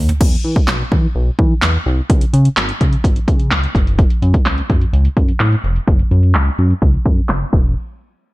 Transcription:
0.00 0.12 D#2 loud
0.09 closed hi-hat medium
0.09 floor tom loud
0.21 0.36 E2 loud
0.21 kick loud
0.21 crash medium
0.44 0.60 E3 medium
0.56 kick medium
0.68 0.83 B1 loud
0.68 snare medium
0.68 clap loud
0.92 1.07 E3 loud
0.92 kick medium
1.15 1.30 B1 loud
1.39 1.54 E3 loud
1.39 kick medium
1.62 1.78 E2 medium
1.62 snare medium
1.62 clap loud
1.86 2.01 C2 medium
2.10 2.25 C#2 loud
2.10 kick loud
2.10 closed hi-hat medium
2.21 closed hi-hat soft
2.33 2.49 C#3 loud
2.33 closed hi-hat medium
2.45 closed hi-hat medium
2.57 2.72 G#1 medium
2.57 snare medium
2.57 clap loud
2.57 closed hi-hat loud
2.69 closed hi-hat medium
2.81 2.96 C#3 loud
2.81 kick medium
2.81 closed hi-hat medium
2.93 closed hi-hat soft
3.04 3.19 G#1 medium
3.04 kick loud
3.04 closed hi-hat loud
3.16 closed hi-hat medium
3.28 3.53 C#3 loud
3.28 kick medium
3.28 closed hi-hat medium
3.40 closed hi-hat soft
3.51 3.67 C#2 medium
3.51 snare medium
3.51 clap loud
3.51 closed hi-hat medium
3.63 closed hi-hat medium
3.75 4.06 F#1 loud
3.75 kick loud
3.75 closed hi-hat medium
3.87 closed hi-hat medium
3.99 kick loud
3.99 closed hi-hat medium
4.10 closed hi-hat soft
4.22 4.38 F#2 loud
4.22 closed hi-hat medium
4.34 kick medium
4.34 closed hi-hat medium
4.46 4.61 C#2 loud
4.46 snare medium
4.46 clap loud
4.46 closed hi-hat loud
4.58 closed hi-hat soft
4.70 4.85 F#2 medium
4.70 kick medium
4.70 closed hi-hat medium
4.81 closed hi-hat soft
4.93 5.08 C#2 medium
4.93 closed hi-hat loud
5.05 closed hi-hat medium
5.17 5.32 F#2 loud
5.17 kick medium
5.17 closed hi-hat medium
5.28 closed hi-hat soft
5.40 5.56 A2 loud
5.40 snare medium
5.40 clap loud
5.40 closed hi-hat medium
5.52 closed hi-hat medium
5.64 5.79 F1 medium
5.64 closed hi-hat medium
5.76 closed hi-hat medium
5.88 6.03 F#1 loud
5.88 kick loud
5.88 closed hi-hat medium
5.99 closed hi-hat medium
6.11 6.36 F#2 loud
6.11 closed hi-hat medium
6.23 closed hi-hat medium
6.35 6.50 C#2 loud
6.35 snare medium
6.35 clap loud
6.35 closed hi-hat loud
6.47 closed hi-hat soft
6.58 6.74 F#2 loud
6.58 closed hi-hat medium
6.70 closed hi-hat soft
6.82 6.97 C#2 medium
6.82 kick loud
6.82 closed hi-hat loud
6.94 closed hi-hat medium
7.06 7.21 F#2 loud
7.06 kick loud
7.06 closed hi-hat medium
7.17 closed hi-hat soft
7.29 7.45 F#1 medium
7.29 snare medium
7.29 clap loud
7.29 closed hi-hat medium
7.41 closed hi-hat medium
7.53 7.75 E1 loud
7.53 kick loud
7.53 crash medium

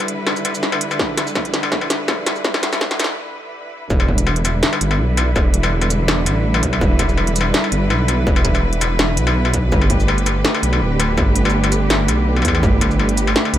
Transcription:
0.00 3.87 D3 medium
0.00 3.86 G3 medium
0.00 3.86 E4 medium
0.00 3.86 B4 medium
0.08 closed hi-hat medium
0.27 snare medium
0.27 struck metal medium
0.36 shaker medium
0.45 closed hi-hat medium
0.45 struck metal soft
0.55 shaker medium
0.63 snare medium
0.72 struck metal medium
0.81 closed hi-hat medium
0.91 struck metal medium
0.91 shaker soft
0.99 kick loud
0.99 snare medium
1.18 snare medium
1.18 closed hi-hat medium
1.18 struck metal medium
1.27 shaker medium
1.35 kick loud
1.35 snare medium
1.35 struck metal soft
1.45 closed hi-hat soft
1.54 snare medium
1.54 closed hi-hat medium
1.63 struck metal medium
1.72 kick loud
1.72 snare medium
1.81 struck metal medium
1.90 snare medium
1.90 closed hi-hat medium
2.08 kick loud
2.08 snare medium
2.08 struck metal medium
2.26 snare medium
2.26 closed hi-hat medium
2.26 struck metal medium
2.26 shaker soft
2.36 shaker soft
2.45 kick medium
2.45 snare medium
2.54 snare medium
2.54 struck metal medium
2.63 snare medium
2.63 closed hi-hat medium
2.73 snare medium
2.73 struck metal medium
2.73 shaker medium
2.81 kick loud
2.81 snare loud
2.91 snare medium
2.91 closed hi-hat soft
3.00 snare loud
3.00 closed hi-hat medium
3.00 struck metal medium
3.04 snare medium
3.90 4.62 E1 loud
3.90 9.68 D3 medium
3.90 9.68 G3 medium
3.90 9.68 E4 medium
3.90 13.58 B4 medium
3.90 kick loud
3.90 shaker soft
4.00 struck metal medium
4.09 kick medium
4.18 closed hi-hat medium
4.18 shaker soft
4.27 struck metal medium
4.36 closed hi-hat soft
4.45 closed hi-hat medium
4.45 struck metal medium
4.45 shaker medium
4.63 snare loud
4.73 struck metal medium
4.81 5.01 G1 loud
4.81 closed hi-hat medium
4.91 struck metal medium
4.99 5.35 B1 medium
5.17 closed hi-hat medium
5.17 struck metal medium
5.36 6.28 E1 loud
5.36 kick loud
5.36 struck metal medium
5.36 shaker soft
5.54 closed hi-hat medium
5.63 struck metal medium
5.63 shaker soft
5.82 closed hi-hat soft
5.82 struck metal medium
5.90 closed hi-hat medium
5.90 shaker medium
6.08 snare loud
6.08 struck metal medium
6.26 6.62 A1 medium
6.26 closed hi-hat medium
6.26 struck metal medium
6.26 shaker soft
6.54 struck metal medium
6.63 6.80 B1 medium
6.63 kick medium
6.63 closed hi-hat medium
6.73 struck metal medium
6.81 7.53 E1 medium
6.81 kick loud
6.81 shaker soft
6.99 kick medium
6.99 closed hi-hat medium
6.99 struck metal medium
7.09 shaker soft
7.17 struck metal medium
7.27 closed hi-hat soft
7.36 closed hi-hat medium
7.36 shaker medium
7.41 struck metal medium
7.54 snare loud
7.64 struck metal medium
7.72 7.92 G1 loud
7.72 closed hi-hat medium
7.90 8.26 B1 medium
7.90 struck metal medium
8.08 closed hi-hat medium
8.08 struck metal medium
8.27 9.19 E1 loud
8.27 kick loud
8.27 shaker soft
8.36 struck metal medium
8.45 kick medium
8.45 closed hi-hat medium
8.55 struck metal medium
8.55 shaker soft
8.73 closed hi-hat soft
8.81 closed hi-hat medium
8.81 struck metal medium
8.81 shaker medium
8.99 snare loud
8.99 struck metal medium
9.17 9.71 B1 loud
9.17 closed hi-hat medium
9.17 shaker soft
9.27 struck metal medium
9.45 struck metal medium
9.54 kick medium
9.54 closed hi-hat medium
9.72 10.44 G1 loud
9.72 13.58 D3 medium
9.72 13.58 A3 medium
9.72 13.58 G4 medium
9.72 kick loud
9.72 shaker soft
9.81 struck metal medium
9.90 kick medium
9.90 closed hi-hat medium
10.00 shaker soft
10.08 struck metal medium
10.18 closed hi-hat soft
10.26 closed hi-hat medium
10.26 struck metal soft
10.26 shaker medium
10.45 snare loud
10.55 struck metal medium
10.63 10.82 B1 loud
10.63 closed hi-hat medium
10.73 struck metal medium
10.81 11.16 D1 medium
11.00 closed hi-hat medium
11.00 struck metal medium
11.18 12.10 G1 loud
11.18 kick loud
11.18 struck metal medium
11.18 shaker soft
11.36 closed hi-hat medium
11.45 struck metal medium
11.50 shaker soft
11.64 closed hi-hat soft
11.64 struck metal medium
11.72 closed hi-hat medium
11.72 shaker medium
11.90 snare loud
11.90 struck metal medium
12.08 12.44 B1 medium
12.08 closed hi-hat medium
12.08 struck metal medium
12.08 shaker soft
12.36 struck metal soft
12.42 12.62 E2 medium
12.42 kick medium
12.42 closed hi-hat medium
12.42 struck metal soft
12.48 struck metal medium
12.55 struck metal medium
12.63 13.35 G1 loud
12.63 kick loud
12.63 shaker soft
12.81 kick medium
12.81 closed hi-hat medium
12.81 struck metal medium
12.91 shaker soft
12.99 struck metal medium
13.09 closed hi-hat soft
13.17 closed hi-hat medium
13.17 shaker medium
13.27 struck metal medium
13.36 snare loud
13.45 struck metal medium
13.53 13.58 B1 loud
13.53 closed hi-hat medium

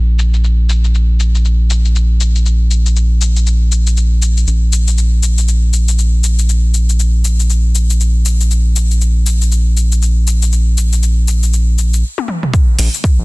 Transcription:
0.00 4.45 A#1 medium
0.19 cabasa medium
0.34 cabasa soft
0.44 cabasa soft
0.69 cabasa medium
0.84 cabasa soft
0.95 cabasa soft
1.20 cabasa medium
1.35 cabasa soft
1.45 cabasa soft
1.70 cabasa medium
1.85 cabasa medium
1.96 cabasa soft
2.21 cabasa medium
2.36 cabasa medium
2.46 cabasa soft
2.71 cabasa medium
2.86 cabasa soft
2.96 cabasa soft
3.21 cabasa medium
3.36 cabasa soft
3.47 cabasa soft
3.72 cabasa medium
3.87 cabasa medium
3.97 cabasa soft
4.22 cabasa medium
4.37 cabasa soft
4.47 12.03 A#1 medium
4.47 cabasa soft
4.73 cabasa medium
4.88 cabasa soft
4.98 cabasa soft
5.23 cabasa medium
5.38 cabasa soft
5.48 cabasa soft
5.73 cabasa medium
5.88 cabasa medium
5.99 cabasa soft
6.24 cabasa medium
6.39 cabasa soft
6.49 cabasa soft
6.74 cabasa medium
6.89 cabasa soft
7.00 cabasa soft
7.25 cabasa medium
7.40 cabasa soft
7.50 cabasa soft
7.75 cabasa medium
7.90 cabasa medium
8.01 cabasa soft
8.26 cabasa medium
8.41 cabasa soft
8.51 cabasa soft
8.76 cabasa medium
8.91 cabasa soft
9.01 cabasa soft
9.26 cabasa medium
9.42 cabasa soft
9.52 cabasa soft
9.77 cabasa medium
9.92 cabasa soft
10.02 cabasa soft
10.27 cabasa medium
10.42 cabasa soft
10.53 cabasa soft
10.78 cabasa medium
10.93 cabasa soft
11.03 cabasa soft
11.28 cabasa medium
11.43 cabasa soft
11.53 cabasa soft
11.79 cabasa medium
11.94 cabasa soft
12.18 high tom soft
12.28 mid tom medium
12.43 mid tom medium
12.54 kick loud
12.54 cabasa soft
12.79 12.88 A#1 loud
12.79 open hi-hat medium
12.79 cabasa medium
12.94 cabasa medium
13.04 kick loud
13.04 cabasa soft
13.19 13.25 A#1 loud

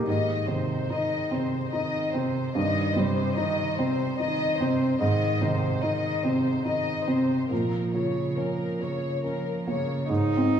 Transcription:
0.00 3.11 D#4 medium
0.00 0.10 G4 medium
0.00 0.10 A#4 medium
0.00 3.54 D#5 medium
0.06 2.52 G#2 soft
0.06 0.50 D#3 soft
0.06 0.45 D#5 soft
0.48 0.92 C3 soft
0.48 1.15 D#3 soft
0.48 0.90 C5 soft
0.90 1.34 D#3 soft
0.90 1.56 D#4 soft
0.90 1.32 D#5 soft
1.31 1.73 C3 soft
1.31 1.73 C4 soft
1.31 1.74 C5 soft
1.72 2.17 D#3 soft
1.72 2.39 D#4 soft
1.72 2.11 D#5 soft
2.13 2.56 C3 soft
2.13 2.56 C4 soft
2.13 2.55 C5 soft
2.55 4.97 G2 soft
2.55 2.99 D#3 soft
2.55 2.94 D#5 soft
2.96 3.40 C3 soft
2.96 3.62 G3 soft
2.96 3.38 C5 soft
3.36 3.80 D#3 soft
3.36 4.03 D#4 soft
3.36 3.78 D#5 soft
3.77 4.20 C3 soft
3.77 4.20 C4 soft
3.77 4.19 C5 soft
4.19 4.63 D#3 soft
4.19 4.85 D#4 soft
4.19 4.58 D#5 medium
4.60 5.01 C3 soft
4.60 5.01 C4 soft
4.60 5.01 C5 soft
5.00 7.47 G#2 medium
5.00 5.44 D#3 soft
5.00 5.39 D#5 soft
5.41 5.84 C3 soft
5.41 6.07 D#3 soft
5.41 5.83 C5 soft
5.83 6.25 D#3 soft
5.83 6.49 D#4 soft
5.83 6.24 D#5 soft
6.24 6.66 C3 soft
6.24 6.66 C4 soft
6.24 6.66 C5 soft
6.65 7.09 D#3 soft
6.65 7.34 D#4 soft
6.65 7.06 D#5 soft
7.07 7.50 C3 soft
7.07 7.51 C4 soft
7.07 7.51 C5 soft
7.51 10.05 A#2 soft
7.51 7.96 F3 soft
7.51 7.92 A#4 soft
7.94 8.38 C#3 soft
7.94 8.64 F3 soft
7.94 8.38 C#5 soft
8.37 8.81 F3 soft
8.37 8.79 C#4 soft
8.37 8.81 A#4 soft
8.80 9.23 C#3 soft
8.80 9.22 C#4 soft
8.80 9.25 C#5 soft
9.24 9.69 F3 soft
9.24 9.93 C#4 soft
9.24 9.65 A#4 soft
9.67 10.09 C#3 soft
9.67 10.10 A#3 soft
9.67 10.10 C#5 soft
10.09 10.60 G#2 soft
10.09 10.60 D#4 medium
10.37 10.60 C4 soft

